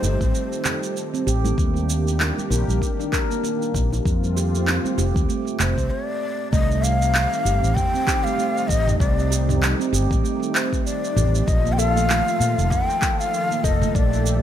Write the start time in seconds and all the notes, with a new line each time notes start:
Already playing: D#3 G3 A3 C4 D#4 F4 A4 C5
0.03 G1, high bongo, low conga, shaker
0.21 kick, high conga, shaker
0.35 shaker
0.52 shaker
0.65 G4, clap, low conga, shaker
0.83 shaker
0.97 shaker
1.14 C4, shaker
1.27 A1 G4, shaker
1.45 A3, high conga, shaker
1.58 D#2 D#3 A#3 D4 G4, kick, shaker
1.76 high conga, shaker
1.90 shaker
2.08 shaker
2.20 clap, high bongo, shaker
2.38 high conga, shaker
2.50 A#1 A#4, high bongo, shaker
2.68 A#1, high conga, shaker
2.82 kick, shaker
3.00 D4, shaker
3.13 A#4, kick, clap, shaker
3.31 A#3, shaker
3.44 A#3, shaker
3.62 shaker
3.74 A#1, kick, low conga, shaker
3.93 high bongo, shaker
4.05 F2 A3 C4 F4, kick, shaker
4.24 high conga, shaker
4.37 G4, shaker
4.55 shaker
4.67 clap, high bongo, shaker
4.84 C4, high conga, shaker
4.98 F1 G4, high bongo, low conga, shaker
5.14 D#2 A3, kick, high conga, shaker
5.29 A3, shaker
5.47 shaker
5.60 F1 C5, clap, low conga, shaker
5.77 C2, kick, shaker
5.91 D5
6.52 C2 D#3 G3 A3 C4 D#4 D#5, kick, shaker
6.71 shaker
6.83 F5, shaker
7.02 shaker
7.15 clap, shaker
7.33 shaker
7.45 G1 G4, shaker
7.63 A1, shaker
7.75 G5, kick, mid tom, shaker
7.94 C4, shaker
8.07 G4, kick, clap, shaker
8.24 A3 F5, shaker
8.38 A3, shaker
8.57 shaker
8.68 A1 D#5, kick, shaker
8.88 mid tom, shaker
8.99 C2 D5, kick, shaker
9.19 shaker
9.31 G4, shaker
9.49 mid tom, shaker
9.63 clap, shaker
9.80 C4, shaker
9.93 G1 G4, shaker
10.11 A1 A3, kick, shaker
10.24 A3, shaker
10.43 shaker
10.55 C5, clap, shaker
10.73 kick, shaker
10.85 D5, shaker
11.04 shaker
11.16 A1 G4, mid tom, shaker
11.35 shaker
11.47 A#1 F3 F4 A4 D#5, kick, shaker
11.65 A#3, shaker
11.73 G5
11.78 A4 F5, shaker
11.96 A3, shaker
12.09 A3, clap, shaker
12.28 shaker
12.40 A#2, shaker
12.58 F1, shaker
12.71 G5, kick, mid tom, shaker
12.90 shaker
13.02 A4, kick, clap, shaker
13.20 F5, shaker
13.34 shaker
13.51 A#3, shaker
13.64 F1 A4 D#5, kick, shaker
13.82 A3, mid tom, shaker
13.95 A#1 A3 G4 D5, kick, shaker
14.13 shaker
14.26 shaker